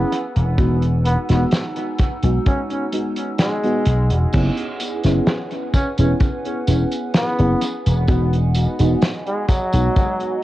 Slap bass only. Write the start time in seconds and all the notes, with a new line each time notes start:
0.36 E1
1.30 E1
2.23 B1
3.86 B1
4.11 E1
4.34 F#1
5.05 F#1
5.99 E1
6.68 E1
7.39 F#1
7.86 E1
8.80 E1
9.74 B1